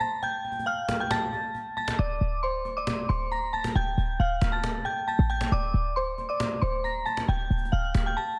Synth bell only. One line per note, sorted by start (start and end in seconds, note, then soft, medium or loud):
0.00 0.20 A5 medium
0.00 0.21 A6 medium
0.23 0.64 G5 loud
0.23 0.64 G6 medium
0.66 0.97 F5 medium
0.66 0.98 F6 medium
1.00 1.10 G5 medium
1.00 1.11 G6 medium
1.11 1.73 A5 medium
1.11 1.73 A6 medium
1.77 1.97 A5 medium
1.77 1.97 A6 medium
1.99 2.41 D5 medium
1.99 2.40 D6 loud
2.43 2.74 C5 medium
2.43 2.74 C6 medium
2.77 3.08 D5 medium
2.77 3.08 D6 medium
3.09 3.30 C5 medium
3.09 3.29 C6 medium
3.32 3.52 A#5 medium
3.32 3.52 A#6 medium
3.53 3.73 A5 medium
3.53 3.74 A6 medium
3.75 4.17 G5 loud
3.75 4.17 G6 medium
4.20 4.51 F5 medium
4.20 4.51 F6 medium
4.52 4.83 A5 medium
4.52 4.84 A6 medium
4.85 5.05 G5 medium
4.85 5.06 G6 medium
5.08 5.28 A5 medium
5.08 5.28 A6 medium
5.30 5.50 G5 medium
5.30 5.50 G6 medium
5.52 5.94 D5 medium
5.52 5.94 D6 loud
5.96 6.28 C5 medium
5.96 6.27 C6 medium
6.29 6.60 D5 medium
6.29 6.60 D6 medium
6.62 6.82 C5 medium
6.62 6.82 C6 medium
6.84 7.04 A#5 medium
6.84 7.05 A#6 medium
7.05 7.26 A5 medium
7.05 7.26 A6 medium
7.29 7.70 G5 loud
7.29 7.70 G6 medium
7.72 8.03 F5 medium
7.72 8.04 F6 medium
8.06 8.16 G5 medium
8.06 8.16 G6 medium
8.17 8.39 A5 medium
8.17 8.39 A6 medium